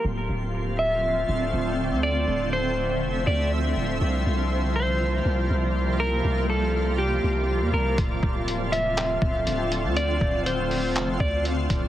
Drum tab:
HH |--------|--------|--------|--------|
CP |--------|--------|--------|--------|
BD |--------|--------|--------|--------|

HH |x-xxx-xx|x-xox-xx|
CP |----x---|----x---|
BD |oo---o--|-o---o-o|